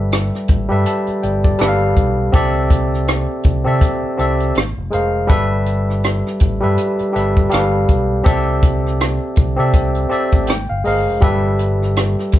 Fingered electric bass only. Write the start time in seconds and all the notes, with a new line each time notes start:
Already playing: G1
0.50 A1
0.71 G2
1.08 muted fingered electric bass stroke
1.23 G1
1.61 G1
1.97 B1
2.34 C2
3.45 C2
3.66 C3
4.03 muted fingered electric bass stroke
4.19 C2
4.56 G#1
4.77 F1
4.93 F1
5.30 G1
6.41 A1
6.63 G2
7.00 muted fingered electric bass stroke
7.16 G1
7.53 G1
7.89 B1
8.26 C2
9.38 C2
9.59 C3
9.74 C2
10.12 muted fingered electric bass stroke
10.33 A1
10.49 G#1
10.70 G1
10.86 G1
11.07 F1
11.22 G1
12.34 A1